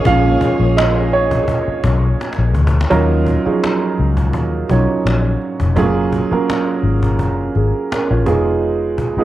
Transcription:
0.00 0.06 F3 medium
0.00 0.07 G#3 soft
0.00 2.87 A#3 medium
0.00 0.08 C#4 medium
0.00 2.87 G#4 medium
0.00 1.13 C#5 medium
0.00 2.87 C#5 medium
0.00 0.77 D#5 medium
0.00 0.06 F5 loud
0.05 0.35 A#1 loud
0.05 2.87 F3 medium
0.05 2.88 G#3 soft
0.05 2.88 C#4 medium
0.05 0.79 F5 medium
0.05 cajon bass loud
0.41 cajon bass medium
0.60 1.44 A#1 medium
0.77 0.85 D#5 medium
0.77 cajon slap loud
1.12 2.52 C#5 medium
1.12 cajon slap soft
1.31 cajon bass medium
1.48 cajon bass medium
1.68 muted fingered electric bass stroke soft
1.84 2.13 B1 medium
1.84 cajon bass loud
2.20 cajon slap soft
2.20 cajon slap medium
2.33 cajon slap medium
2.38 2.55 A#1 medium
2.55 2.84 D2 medium
2.55 cajon bass medium
2.67 cajon bass medium
2.81 cajon slap medium
2.90 3.36 D#2 medium
2.90 3.42 F#3 medium
2.90 3.42 C#4 medium
2.90 3.43 D#4 medium
2.90 3.43 F4 medium
2.90 3.43 A#4 medium
2.90 cajon bass medium
3.26 cajon bass medium
3.45 3.51 F3 medium
3.45 4.63 C#4 medium
3.45 4.63 D#4 medium
3.45 4.64 F4 medium
3.45 4.64 G#4 medium
3.45 muted fingered electric bass stroke soft
3.52 4.66 F#3 medium
3.64 cajon slap medium
3.98 4.34 C#2 medium
3.98 cajon slap soft
4.17 cajon bass medium
4.33 4.63 D#2 medium
4.33 cajon bass medium
4.69 4.85 B1 medium
4.69 5.71 F#3 medium
4.69 5.72 C#4 medium
4.69 5.72 D#4 medium
4.69 5.72 F4 medium
4.69 5.72 C#5 medium
4.69 cajon bass medium
5.05 5.35 A#1 medium
5.05 cajon slap medium
5.42 cajon slap soft
5.60 5.77 F1 medium
5.60 cajon bass medium
5.76 6.22 F#1 medium
5.76 6.28 F#3 medium
5.76 5.83 A3 medium
5.76 6.28 C#4 medium
5.76 6.29 F4 medium
5.76 6.29 G#4 loud
5.76 cajon bass medium
5.83 6.30 A#3 medium
6.12 cajon bass medium
6.31 7.49 F#3 medium
6.31 7.49 A#3 medium
6.31 7.50 C#4 medium
6.31 7.50 F4 medium
6.31 7.50 A#4 medium
6.31 muted fingered electric bass stroke soft
6.50 cajon slap loud
6.83 7.20 G#1 medium
6.83 cajon slap soft
7.03 cajon bass medium
7.19 7.49 F#1 medium
7.19 cajon bass medium
7.55 7.71 G#1 medium
7.55 7.90 G#4 medium
7.55 cajon slap soft
7.92 8.10 C#4 soft
7.92 8.09 A#4 medium
7.92 cajon slap medium
8.10 8.27 A#1 medium
8.10 8.25 F4 soft
8.10 8.44 C#5 medium
8.26 9.01 F1 medium
8.26 9.12 G#3 medium
8.26 9.12 B3 medium
8.26 9.12 D#4 medium
8.26 9.12 F4 medium
8.26 9.13 G#4 medium
8.26 cajon bass medium
8.62 cajon slap soft
8.98 cajon bass medium
9.17 9.24 G#3 medium
9.17 9.24 B3 medium
9.17 9.24 D#4 medium
9.17 9.24 F4 medium
9.17 9.24 G#4 medium
9.17 muted fingered electric bass stroke soft

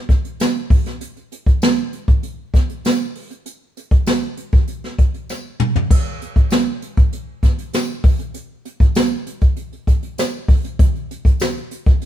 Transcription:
0.09 kick medium
0.09 snare soft
0.09 closed hi-hat medium
0.25 closed hi-hat medium
0.40 snare medium
0.40 closed hi-hat medium
0.40 tambourine medium
0.56 closed hi-hat soft
0.70 kick loud
0.70 open hi-hat medium
0.86 snare soft
0.86 closed hi-hat soft
1.01 closed hi-hat medium
1.16 closed hi-hat soft
1.32 closed hi-hat medium
1.46 kick medium
1.46 closed hi-hat soft
1.62 snare loud
1.62 closed hi-hat medium
1.62 tambourine medium
1.78 closed hi-hat soft
1.93 closed hi-hat medium
2.08 kick medium
2.08 closed hi-hat soft
2.23 closed hi-hat medium
2.54 kick medium
2.54 snare soft
2.54 closed hi-hat medium
2.69 closed hi-hat medium
2.85 snare medium
2.85 closed hi-hat medium
2.85 tambourine medium
3.15 open hi-hat medium
3.31 closed hi-hat soft
3.46 closed hi-hat medium
3.77 closed hi-hat medium
3.91 kick medium
3.91 closed hi-hat soft
4.06 snare loud
4.06 closed hi-hat medium
4.06 tambourine medium
4.23 closed hi-hat soft
4.37 closed hi-hat medium
4.52 kick medium
4.52 closed hi-hat soft
4.67 closed hi-hat medium
4.84 snare soft
4.84 closed hi-hat soft
4.99 kick medium
4.99 closed hi-hat medium
5.14 closed hi-hat soft
5.29 snare medium
5.29 tambourine medium
5.60 mid tom medium
5.76 floor tom medium
5.91 kick loud
5.91 crash medium
6.22 closed hi-hat medium
6.36 kick medium
6.36 closed hi-hat medium
6.50 snare loud
6.50 closed hi-hat medium
6.50 tambourine medium
6.82 closed hi-hat medium
6.97 kick medium
6.97 closed hi-hat soft
7.13 closed hi-hat medium
7.43 kick medium
7.43 snare soft
7.43 closed hi-hat medium
7.58 closed hi-hat medium
7.73 snare medium
7.73 closed hi-hat medium
7.73 tambourine medium
7.89 closed hi-hat soft
8.04 kick loud
8.04 open hi-hat medium
8.19 closed hi-hat soft
8.34 closed hi-hat medium
8.65 closed hi-hat medium
8.80 kick medium
8.80 closed hi-hat medium
8.95 snare loud
8.95 closed hi-hat medium
8.95 tambourine medium
9.27 closed hi-hat medium
9.41 kick medium
9.41 closed hi-hat soft
9.57 closed hi-hat medium
9.73 closed hi-hat soft
9.87 kick medium
9.87 closed hi-hat medium
10.03 closed hi-hat medium
10.18 snare medium
10.18 closed hi-hat medium
10.18 tambourine medium
10.48 kick medium
10.48 open hi-hat medium
10.64 closed hi-hat soft
10.79 kick loud
10.79 closed hi-hat medium
10.95 closed hi-hat soft
11.11 closed hi-hat medium
11.25 kick medium
11.25 closed hi-hat medium
11.40 snare loud
11.40 closed hi-hat medium
11.40 tambourine medium
11.57 closed hi-hat soft
11.71 closed hi-hat medium
11.86 kick medium
11.86 closed hi-hat soft
12.02 closed hi-hat medium

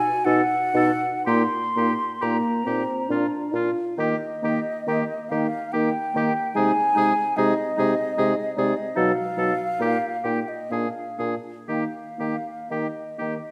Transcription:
0.00 0.26 G#5 loud
0.25 0.42 B2 medium
0.25 0.41 D#4 medium
0.25 0.42 F#4 medium
0.25 0.42 A4 medium
0.25 1.26 F#5 loud
0.74 0.90 B2 medium
0.74 0.90 D#4 medium
0.74 0.91 F#4 medium
0.74 0.92 A4 medium
1.26 1.43 A#2 medium
1.26 1.43 A#3 medium
1.26 1.44 D#4 medium
1.26 1.42 G4 medium
1.26 2.24 C6 loud
1.75 1.92 A#2 medium
1.75 1.92 A#3 medium
1.75 1.91 D#4 soft
1.75 1.93 G4 soft
2.21 2.38 A#2 medium
2.21 2.66 A#3 medium
2.21 2.39 D#4 soft
2.21 2.37 G4 medium
2.21 3.54 A#5 medium
2.65 2.83 A#2 medium
2.65 3.09 C4 medium
2.65 2.83 D#4 soft
2.65 2.83 G4 soft
3.09 3.26 A#2 medium
3.09 3.25 D4 soft
3.09 3.55 D4 medium
3.09 3.27 F4 soft
3.53 3.69 A#2 medium
3.53 3.70 D4 soft
3.53 3.97 F4 medium
3.53 3.71 F4 soft
3.97 4.14 D#3 medium
3.97 4.14 A#3 medium
3.97 4.13 D#4 medium
3.97 4.15 G4 medium
3.97 5.31 D#5 medium
4.42 4.60 D#3 soft
4.42 4.58 A#3 soft
4.42 4.58 D#4 soft
4.42 4.60 G4 soft
4.87 5.04 D#3 medium
4.87 5.03 A#3 medium
4.87 5.03 D#4 medium
4.87 5.04 G4 medium
5.29 5.47 D#3 medium
5.29 5.47 A#3 medium
5.29 5.47 D#4 medium
5.29 5.47 G4 soft
5.29 5.74 F5 medium
5.72 5.91 D#3 medium
5.72 5.89 A#3 medium
5.72 5.89 D#4 soft
5.72 5.89 G4 medium
5.72 6.57 G5 medium
6.14 6.32 D#3 medium
6.14 6.30 A#3 medium
6.14 6.30 D#4 soft
6.14 6.33 G4 medium
6.55 6.73 C3 medium
6.55 6.71 G#3 medium
6.55 6.71 D#4 medium
6.55 6.72 G#4 medium
6.55 7.38 G#5 loud
6.95 7.13 C3 medium
6.95 7.12 G#3 medium
6.95 7.11 D#4 medium
6.95 7.13 G#4 medium
7.37 7.54 C3 medium
7.37 7.53 G#3 medium
7.37 7.54 D#4 medium
7.37 7.54 G#4 medium
7.37 8.56 D#5 medium
7.77 7.95 C3 medium
7.77 7.94 G#3 medium
7.77 7.93 D#4 medium
7.77 7.95 G#4 medium
8.17 8.35 C3 medium
8.17 8.33 G#3 medium
8.17 8.33 D#4 medium
8.17 8.34 G#4 medium
8.56 8.74 C3 medium
8.56 8.73 G#3 medium
8.56 8.72 D#4 soft
8.56 8.74 G#4 medium
8.56 8.79 D5 medium
8.77 8.98 D#5 medium
8.95 9.13 B2 medium
8.95 9.13 F#3 medium
8.95 9.11 D#4 medium
8.95 9.12 A4 medium
8.95 10.26 F5 loud
9.36 9.53 B2 medium
9.36 9.53 F#3 soft
9.36 9.52 D#4 medium
9.36 9.54 A4 medium
9.79 9.96 A#2 medium
9.79 9.96 A#3 medium
9.79 9.95 D#4 medium
9.79 9.98 G4 medium
10.24 10.41 A#2 medium
10.24 10.41 A#3 soft
10.24 10.40 D#4 soft
10.24 10.40 G4 soft
10.24 10.50 G5 medium
10.48 10.72 D#5 medium
10.70 10.87 A#2 soft
10.70 10.86 A#3 soft
10.70 10.87 D4 soft
10.70 10.88 G#4 soft
10.70 11.35 F5 medium
11.18 11.35 A#2 soft
11.18 11.34 A#3 soft
11.18 11.35 D4 soft
11.18 11.35 G#4 soft
11.68 11.85 D#3 soft
11.68 11.84 A#3 soft
11.68 11.86 D#4 soft
11.68 11.84 G4 soft
11.68 12.72 F5 medium
12.18 12.36 D#3 soft
12.18 12.34 A#3 soft
12.18 12.35 D#4 soft
12.18 12.36 G4 soft
12.70 12.87 D#3 soft
12.70 12.86 A#3 soft
12.70 12.86 D#4 soft
12.70 12.87 G4 soft
12.70 13.51 D#5 soft
13.18 13.37 D#3 soft
13.18 13.35 A#3 soft
13.18 13.35 D#4 soft
13.18 13.34 G4 soft

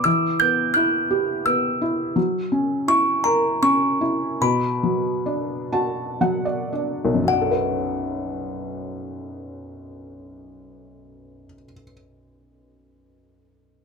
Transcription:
0.04 2.13 E3 medium
0.04 0.41 E6 medium
0.40 1.45 B3 soft
0.40 0.73 G6 medium
0.74 1.80 E4 medium
0.74 1.41 F#6 medium
1.11 2.14 G4 medium
1.46 2.15 B3 medium
1.46 1.95 E6 medium
1.82 2.16 E4 medium
2.16 4.37 F#3 medium
2.52 3.61 C#4 soft
2.88 3.99 E4 medium
2.88 3.26 C#6 medium
3.24 4.38 A#4 medium
3.24 3.63 A#5 medium
3.62 4.39 C#4 medium
3.62 4.44 C#6 loud
4.01 4.40 E4 medium
4.41 7.24 B2 medium
4.41 6.69 B5 medium
4.83 6.19 F#3 soft
5.26 6.71 D4 medium
5.72 7.25 F#4 medium
5.72 6.17 A5 medium
6.21 7.22 F#3 soft
6.21 6.45 F#5 medium
6.45 7.24 D5 medium
6.73 7.27 D4 medium
7.05 11.45 B1 soft
7.14 11.55 F#2 soft
7.23 11.64 F#3 soft
7.28 11.69 F#5 medium
7.33 11.73 D4 soft
7.41 11.82 A4 soft
7.51 11.92 B4 soft

